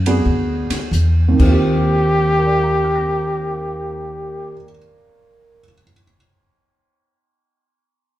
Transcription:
0, 0, Header, 1, 6, 480
1, 0, Start_track
1, 0, Key_signature, -3, "major"
1, 0, Tempo, 651466
1, 681, Tempo, 710900
1, 1161, Time_signature, 4, 2, 24, 8
1, 1161, Tempo, 739827
1, 5414, End_track
2, 0, Start_track
2, 0, Title_t, "Upright piano"
2, 0, Program_c, 0, 0
2, 50, Note_on_c, 0, 59, 66
2, 50, Note_on_c, 0, 66, 62
2, 51, Note_on_c, 0, 62, 57
2, 55, Note_on_c, 0, 68, 77
2, 652, Note_off_c, 0, 59, 0
2, 652, Note_off_c, 0, 62, 0
2, 652, Note_off_c, 0, 66, 0
2, 655, Note_off_c, 0, 68, 0
2, 922, Note_on_c, 0, 39, 56
2, 958, Note_on_c, 0, 51, 55
2, 1005, Note_on_c, 0, 60, 56
2, 1047, Note_on_c, 0, 65, 55
2, 1088, Note_on_c, 0, 67, 69
2, 1648, Note_on_c, 0, 70, 44
2, 1695, Note_on_c, 0, 74, 39
2, 1750, Note_on_c, 0, 77, 36
2, 1808, Note_on_c, 0, 82, 36
2, 1873, Note_on_c, 0, 86, 32
2, 1943, Note_on_c, 0, 89, 33
2, 2017, Note_on_c, 0, 94, 32
2, 3027, Note_off_c, 0, 39, 0
2, 3062, Note_off_c, 0, 51, 0
2, 3107, Note_off_c, 0, 60, 0
2, 3148, Note_off_c, 0, 65, 0
2, 3187, Note_off_c, 0, 67, 0
2, 3718, Note_off_c, 0, 70, 0
2, 3765, Note_off_c, 0, 74, 0
2, 3820, Note_off_c, 0, 77, 0
2, 3879, Note_off_c, 0, 82, 0
2, 3943, Note_off_c, 0, 86, 0
2, 4013, Note_off_c, 0, 89, 0
2, 4087, Note_off_c, 0, 94, 0
2, 5414, End_track
3, 0, Start_track
3, 0, Title_t, "Trumpet"
3, 0, Program_c, 1, 56
3, 1006, Note_on_c, 1, 67, 86
3, 3082, Note_off_c, 1, 67, 0
3, 5414, End_track
4, 0, Start_track
4, 0, Title_t, "Upright bass"
4, 0, Program_c, 2, 32
4, 0, Note_on_c, 2, 42, 83
4, 177, Note_off_c, 2, 42, 0
4, 186, Note_on_c, 2, 38, 77
4, 491, Note_off_c, 2, 38, 0
4, 673, Note_on_c, 2, 40, 80
4, 987, Note_off_c, 2, 40, 0
4, 997, Note_on_c, 2, 39, 79
4, 3073, Note_off_c, 2, 39, 0
4, 5414, End_track
5, 0, Start_track
5, 0, Title_t, "Muted upright bass strokes"
5, 512, Note_on_c, 9, 29, 36
5, 585, Note_off_c, 9, 29, 0
5, 5414, End_track
6, 0, Start_track
6, 0, Title_t, "Drums"
6, 44, Note_on_c, 9, 51, 59
6, 118, Note_off_c, 9, 51, 0
6, 518, Note_on_c, 9, 38, 35
6, 518, Note_on_c, 9, 51, 66
6, 592, Note_off_c, 9, 38, 0
6, 592, Note_off_c, 9, 51, 0
6, 683, Note_on_c, 9, 44, 57
6, 751, Note_off_c, 9, 44, 0
6, 998, Note_on_c, 9, 36, 53
6, 998, Note_on_c, 9, 49, 57
6, 1066, Note_off_c, 9, 36, 0
6, 1066, Note_off_c, 9, 49, 0
6, 5414, End_track
0, 0, End_of_file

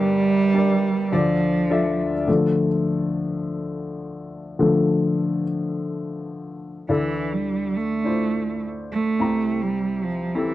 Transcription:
0, 0, Header, 1, 3, 480
1, 0, Start_track
1, 0, Key_signature, -1, "minor"
1, 0, Tempo, 576923
1, 1895, Time_signature, 4, 2, 24, 8
1, 8773, End_track
2, 0, Start_track
2, 0, Title_t, "Upright piano"
2, 0, Program_c, 0, 0
2, 0, Control_c, 0, 64, 127
2, 0, Note_on_c, 0, 31, 71
2, 0, Note_on_c, 0, 43, 68
2, 0, Note_on_c, 0, 62, 76
2, 0, Note_on_c, 0, 67, 76
2, 0, Note_on_c, 0, 70, 78
2, 0, Note_on_c, 0, 74, 87
2, 310, Note_off_c, 0, 62, 0
2, 312, Note_off_c, 0, 67, 0
2, 315, Note_off_c, 0, 70, 0
2, 316, Note_off_c, 0, 74, 0
2, 447, Note_on_c, 0, 62, 66
2, 451, Note_on_c, 0, 67, 61
2, 457, Note_on_c, 0, 70, 53
2, 461, Note_on_c, 0, 74, 69
2, 806, Note_off_c, 0, 62, 0
2, 808, Note_off_c, 0, 67, 0
2, 811, Note_off_c, 0, 70, 0
2, 813, Note_off_c, 0, 74, 0
2, 904, Note_off_c, 0, 31, 0
2, 904, Note_off_c, 0, 43, 0
2, 929, Note_on_c, 0, 62, 63
2, 934, Note_on_c, 0, 65, 56
2, 935, Note_on_c, 0, 50, 59
2, 936, Note_on_c, 0, 69, 59
2, 937, Note_on_c, 0, 38, 52
2, 939, Note_on_c, 0, 74, 79
2, 947, Control_c, 0, 64, 0
2, 1100, Control_c, 0, 64, 127
2, 1287, Note_off_c, 0, 62, 0
2, 1290, Note_off_c, 0, 65, 0
2, 1291, Note_off_c, 0, 69, 0
2, 1292, Note_off_c, 0, 74, 0
2, 1414, Note_on_c, 0, 62, 75
2, 1418, Note_on_c, 0, 65, 65
2, 1421, Note_on_c, 0, 69, 60
2, 1427, Note_on_c, 0, 76, 75
2, 1769, Note_off_c, 0, 62, 0
2, 1772, Note_off_c, 0, 65, 0
2, 1773, Note_off_c, 0, 69, 0
2, 1776, Note_off_c, 0, 76, 0
2, 1862, Note_off_c, 0, 50, 0
2, 1863, Note_off_c, 0, 38, 0
2, 1894, Note_on_c, 0, 50, 51
2, 1895, Note_on_c, 0, 53, 46
2, 1900, Note_on_c, 0, 57, 57
2, 1906, Control_c, 0, 64, 0
2, 2031, Control_c, 0, 64, 127
2, 2214, Note_off_c, 0, 50, 0
2, 2214, Note_off_c, 0, 53, 0
2, 2217, Note_off_c, 0, 57, 0
2, 3819, Note_on_c, 0, 50, 48
2, 3825, Note_on_c, 0, 53, 43
2, 3831, Note_on_c, 0, 57, 51
2, 4504, Note_off_c, 0, 50, 0
2, 4507, Note_off_c, 0, 53, 0
2, 4510, Note_off_c, 0, 57, 0
2, 5730, Note_on_c, 0, 62, 55
2, 5733, Note_on_c, 0, 38, 44
2, 5736, Note_on_c, 0, 64, 45
2, 5737, Note_on_c, 0, 50, 46
2, 5741, Note_on_c, 0, 69, 54
2, 5745, Control_c, 0, 64, 0
2, 5896, Control_c, 0, 64, 127
2, 6444, Note_off_c, 0, 62, 0
2, 6447, Note_off_c, 0, 64, 0
2, 6449, Note_off_c, 0, 69, 0
2, 6688, Note_on_c, 0, 62, 52
2, 6695, Note_on_c, 0, 64, 46
2, 6697, Note_on_c, 0, 65, 43
2, 6703, Note_on_c, 0, 72, 51
2, 7403, Note_off_c, 0, 62, 0
2, 7407, Note_off_c, 0, 64, 0
2, 7407, Note_off_c, 0, 65, 0
2, 7411, Note_off_c, 0, 72, 0
2, 7623, Note_off_c, 0, 38, 0
2, 7625, Note_off_c, 0, 50, 0
2, 7651, Note_on_c, 0, 60, 52
2, 7654, Note_on_c, 0, 64, 46
2, 7656, Note_on_c, 0, 36, 41
2, 7656, Note_on_c, 0, 48, 45
2, 7660, Note_on_c, 0, 67, 52
2, 7665, Note_on_c, 0, 82, 63
2, 7667, Control_c, 0, 64, 0
2, 7802, Control_c, 0, 64, 127
2, 8365, Note_off_c, 0, 60, 0
2, 8367, Note_off_c, 0, 64, 0
2, 8369, Note_off_c, 0, 67, 0
2, 8372, Note_off_c, 0, 82, 0
2, 8609, Note_on_c, 0, 60, 50
2, 8616, Note_on_c, 0, 64, 45
2, 8618, Note_on_c, 0, 67, 49
2, 8621, Note_on_c, 0, 69, 59
2, 8773, Note_off_c, 0, 36, 0
2, 8773, Note_off_c, 0, 48, 0
2, 8773, Note_off_c, 0, 60, 0
2, 8773, Note_off_c, 0, 64, 0
2, 8773, Note_off_c, 0, 67, 0
2, 8773, Note_off_c, 0, 69, 0
2, 8773, End_track
3, 0, Start_track
3, 0, Title_t, "Cello"
3, 0, Program_c, 1, 42
3, 0, Note_on_c, 1, 55, 109
3, 936, Note_on_c, 1, 53, 85
3, 948, Note_off_c, 1, 55, 0
3, 1655, Note_off_c, 1, 53, 0
3, 5738, Note_on_c, 1, 52, 65
3, 6099, Note_on_c, 1, 55, 65
3, 6111, Note_off_c, 1, 52, 0
3, 6462, Note_on_c, 1, 57, 72
3, 6474, Note_off_c, 1, 55, 0
3, 7180, Note_off_c, 1, 57, 0
3, 7423, Note_on_c, 1, 57, 74
3, 8003, Note_on_c, 1, 55, 65
3, 8015, Note_off_c, 1, 57, 0
3, 8356, Note_on_c, 1, 53, 60
3, 8369, Note_off_c, 1, 55, 0
3, 8607, Note_on_c, 1, 52, 56
3, 8619, Note_off_c, 1, 53, 0
3, 8773, Note_off_c, 1, 52, 0
3, 8773, End_track
0, 0, End_of_file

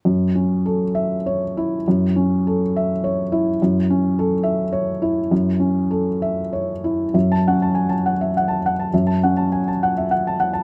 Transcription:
0, 0, Header, 1, 2, 480
1, 0, Start_track
1, 0, Key_signature, 3, "minor"
1, 0, Tempo, 601202
1, 42, Time_signature, 3, 2, 24, 8
1, 1482, Tempo, 577478
1, 4842, Tempo, 624350
1, 5802, Tempo, 591716
1, 8628, End_track
2, 0, Start_track
2, 0, Title_t, "Felt piano"
2, 0, Program_c, 0, 0
2, 41, Note_on_c, 0, 42, 40
2, 207, Control_c, 0, 64, 127
2, 282, Note_on_c, 0, 61, 33
2, 524, Note_on_c, 0, 69, 33
2, 667, Note_off_c, 0, 61, 0
2, 757, Note_on_c, 0, 76, 46
2, 910, Note_off_c, 0, 69, 0
2, 1009, Note_on_c, 0, 73, 36
2, 1145, Note_off_c, 0, 76, 0
2, 1256, Note_on_c, 0, 64, 39
2, 1389, Note_off_c, 0, 73, 0
2, 1449, Note_off_c, 0, 42, 0
2, 1495, Control_c, 0, 64, 0
2, 1500, Note_on_c, 0, 42, 44
2, 1635, Note_off_c, 0, 64, 0
2, 1638, Control_c, 0, 64, 127
2, 1736, Note_on_c, 0, 61, 36
2, 1992, Note_on_c, 0, 69, 35
2, 2116, Note_off_c, 0, 61, 0
2, 2237, Note_on_c, 0, 76, 38
2, 2362, Note_off_c, 0, 69, 0
2, 2465, Note_on_c, 0, 73, 38
2, 2603, Note_off_c, 0, 76, 0
2, 2700, Note_on_c, 0, 64, 44
2, 2836, Note_off_c, 0, 73, 0
2, 2896, Note_off_c, 0, 42, 0
2, 2937, Control_c, 0, 64, 0
2, 2949, Note_on_c, 0, 42, 41
2, 3070, Note_off_c, 0, 64, 0
2, 3081, Control_c, 0, 64, 127
2, 3184, Note_on_c, 0, 61, 37
2, 3421, Note_on_c, 0, 69, 41
2, 3549, Note_off_c, 0, 61, 0
2, 3625, Note_on_c, 0, 76, 41
2, 3789, Note_off_c, 0, 69, 0
2, 3867, Note_on_c, 0, 73, 41
2, 4012, Note_off_c, 0, 76, 0
2, 4111, Note_on_c, 0, 64, 39
2, 4254, Note_off_c, 0, 73, 0
2, 4334, Note_off_c, 0, 42, 0
2, 4356, Note_on_c, 0, 42, 46
2, 4368, Control_c, 0, 64, 0
2, 4493, Control_c, 0, 64, 127
2, 4498, Note_off_c, 0, 64, 0
2, 4591, Note_on_c, 0, 61, 36
2, 4848, Note_on_c, 0, 69, 40
2, 4980, Note_off_c, 0, 61, 0
2, 5090, Note_on_c, 0, 76, 39
2, 5222, Note_off_c, 0, 69, 0
2, 5325, Note_on_c, 0, 73, 37
2, 5469, Note_off_c, 0, 76, 0
2, 5567, Note_on_c, 0, 64, 34
2, 5713, Note_off_c, 0, 73, 0
2, 5774, Note_off_c, 0, 42, 0
2, 5797, Note_on_c, 0, 42, 40
2, 5800, Note_on_c, 0, 76, 33
2, 5805, Note_off_c, 0, 64, 0
2, 5816, Control_c, 0, 64, 0
2, 5939, Note_on_c, 0, 81, 54
2, 5947, Control_c, 0, 64, 127
2, 5996, Note_off_c, 0, 76, 0
2, 6069, Note_on_c, 0, 61, 40
2, 6069, Note_on_c, 0, 78, 37
2, 6126, Note_off_c, 0, 81, 0
2, 6187, Note_on_c, 0, 81, 36
2, 6250, Note_off_c, 0, 78, 0
2, 6289, Note_on_c, 0, 80, 33
2, 6367, Note_off_c, 0, 81, 0
2, 6407, Note_off_c, 0, 80, 0
2, 6407, Note_on_c, 0, 81, 40
2, 6440, Note_off_c, 0, 61, 0
2, 6542, Note_on_c, 0, 78, 39
2, 6597, Note_off_c, 0, 81, 0
2, 6664, Note_on_c, 0, 76, 35
2, 6724, Note_off_c, 0, 78, 0
2, 6774, Note_off_c, 0, 76, 0
2, 6794, Note_on_c, 0, 78, 42
2, 6883, Note_on_c, 0, 81, 41
2, 6970, Note_off_c, 0, 78, 0
2, 7028, Note_on_c, 0, 78, 43
2, 7074, Note_off_c, 0, 81, 0
2, 7139, Note_on_c, 0, 81, 35
2, 7205, Note_off_c, 0, 42, 0
2, 7206, Note_off_c, 0, 78, 0
2, 7254, Note_on_c, 0, 42, 40
2, 7256, Control_c, 0, 64, 0
2, 7257, Note_on_c, 0, 76, 37
2, 7321, Note_off_c, 0, 81, 0
2, 7360, Note_on_c, 0, 81, 39
2, 7374, Control_c, 0, 64, 127
2, 7441, Note_off_c, 0, 76, 0
2, 7495, Note_on_c, 0, 78, 43
2, 7498, Note_on_c, 0, 61, 37
2, 7553, Note_off_c, 0, 81, 0
2, 7603, Note_on_c, 0, 81, 39
2, 7681, Note_off_c, 0, 78, 0
2, 7729, Note_on_c, 0, 80, 33
2, 7795, Note_off_c, 0, 81, 0
2, 7845, Note_off_c, 0, 80, 0
2, 7855, Note_on_c, 0, 81, 42
2, 7874, Note_off_c, 0, 61, 0
2, 7978, Note_on_c, 0, 78, 44
2, 8040, Note_off_c, 0, 81, 0
2, 8096, Note_on_c, 0, 76, 34
2, 8162, Note_off_c, 0, 78, 0
2, 8206, Note_on_c, 0, 78, 43
2, 8209, Note_off_c, 0, 76, 0
2, 8337, Note_on_c, 0, 81, 41
2, 8396, Note_off_c, 0, 78, 0
2, 8439, Note_on_c, 0, 78, 48
2, 8521, Note_off_c, 0, 81, 0
2, 8550, Note_on_c, 0, 81, 39
2, 8628, Note_off_c, 0, 42, 0
2, 8628, Note_off_c, 0, 78, 0
2, 8628, Note_off_c, 0, 81, 0
2, 8628, End_track
0, 0, End_of_file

